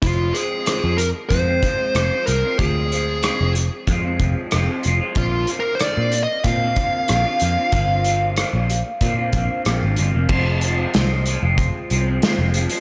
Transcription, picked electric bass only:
X:1
M:4/4
L:1/16
Q:1/4=94
K:Fdor
V:1 name="Picked electric bass" clef=bass
F,,,2 z3 F,,2 z F,,2 z2 F,,, z C,, z | D,,4- D,, F,,,2 z F,,2 F,,, z F,,, z F,,, z | B,,,2 z3 B,,2 z B,,2 z2 B,,, z F,, z | G,,,4- G,,, B,,,2 z B,,2 B,,, z B,,, A,,, G,,, F,,, |
F,,,4 C,,3 F,,,2 z C,,2 z F,,,2 z |]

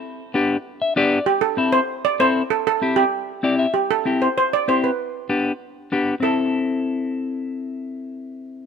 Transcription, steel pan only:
X:1
M:4/4
L:1/8
Q:1/4=194
K:Am
V:1 name="Steel pan"
z8 | G A2 c2 d c2 | A A2 G4 z | G A2 c c d c B- |
B6- B z | A8- | A8 |]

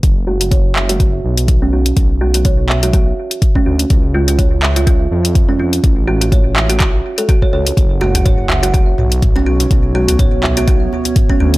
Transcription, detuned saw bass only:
X:1
M:4/4
L:1/8
Q:"Swing 16ths" 1/4=124
K:F#m
V:1 name="Detuned saw bass" clef=bass
F,,,4- F,,, B,,,3 | B,,,4- B,,, z2 D,, | C,,4- C,, ^E,,3 | A,,,4- A,,, z2 C,, |
F,,,4- F,,, B,,,3 | B,,,4- B,,, z2 D,, |]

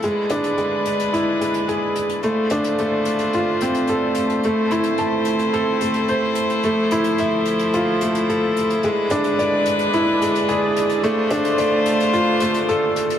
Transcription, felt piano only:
X:1
M:4/4
L:1/8
Q:1/4=109
K:Ephr
V:1 name="Felt piano"
^G, D G, z E G, ^G z | A, D A, z F C A z | A, E a z A A, c z | A, E e z F A, A z |
^G, D d z E G, ^G z | A, D d z F A, A z |]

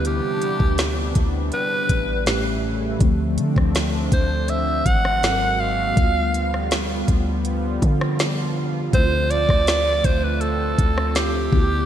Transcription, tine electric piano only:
X:1
M:4/4
L:1/8
Q:1/4=81
K:Ddor
V:1 name="Tine electric piano"
[D,B,EG]6 [A,,A,^CG]2 | [D,F,A,C]6 [^G,,^F,^B,A^A]2 | [G,B,F]8 | [D,A,CEF]6- [D,A,CEF] [D,B,E^FG] |]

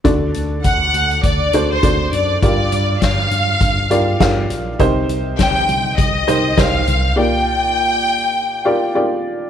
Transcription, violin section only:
X:1
M:4/4
L:1/16
Q:"Swing 16ths" 1/4=101
K:Gm
V:1 name="Violin section"
z4 ^f4 d3 c3 d2 | d4 f8 z4 | z4 g4 e4 f4 | g12 z4 |]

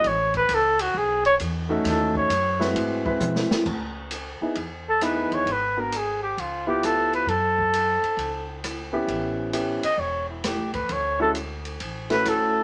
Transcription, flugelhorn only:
X:1
M:4/4
L:1/8
Q:"Swing" 1/4=133
K:C#m
V:1 name="Flugelhorn"
c B A F G c z2 | A c3 z4 | z4 z A B c | B ^A G =G ^E G =A B |
A6 z2 | z3 d c E =G B | c A z3 B A2 |]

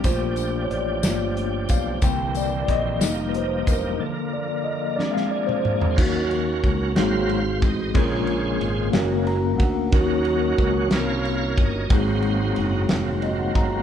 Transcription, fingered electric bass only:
X:1
M:6/8
L:1/8
Q:3/8=61
K:Bb
V:1 name="Fingered electric bass" clef=bass
B,,,2 A,,, G,,,2 _C,, | C,,2 B,,, F,,,2 =E,,, | z6 | [K:Ebdor] E,,2 D,, A,,,2 =A,,, |
B,,,2 A,,, G,,,2 =D,, | E,,2 D,, C,,2 =G,,, | A,,,2 G,,, F,,,2 =G,,, |]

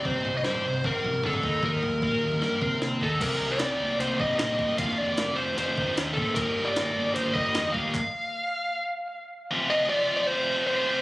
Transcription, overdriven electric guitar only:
X:1
M:4/4
L:1/8
Q:1/4=152
K:Fmix
V:1 name="Overdriven electric guitar" clef=bass
[C,G,CE]6- [C,G,CE] [E,G,B,E]- | [E,G,B,E]6- [E,G,B,E] z | C, G, C, B, E G, C, B, | F,, E, C,2 E E, C, B, |
G,, G, E, B,2 G, E, B, | z8 | z8 |]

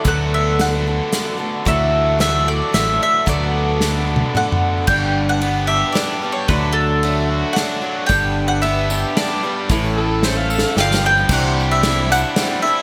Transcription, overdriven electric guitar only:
X:1
M:3/4
L:1/8
Q:1/4=112
K:Glyd
V:1 name="Overdriven electric guitar"
[D,B,DF]6 | [D,F,A,DF]6 | [D,B,DF]6 | G,,2 B, G D G, |
D,2 A, F D F, | G,,2 B, G D G, | A,,2 A, A G,, =F, | [K:Clyd] C, G, E D G, E |]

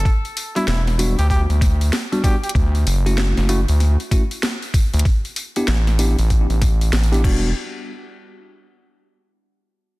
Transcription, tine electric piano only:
X:1
M:4/4
L:1/16
Q:"Swing 16ths" 1/4=96
K:Edor
V:1 name="Tine electric piano"
z3 [G,B,DF] z2 [G,B,DF] z6 [G,B,DF] [G,B,DF] z | z3 [A,CEF]3 [A,CEF] z3 [A,CEF] z4 z | z3 [B,DEG] z2 [B,DEG] z6 [B,DEG] [G,B,DF]2 | z16 |]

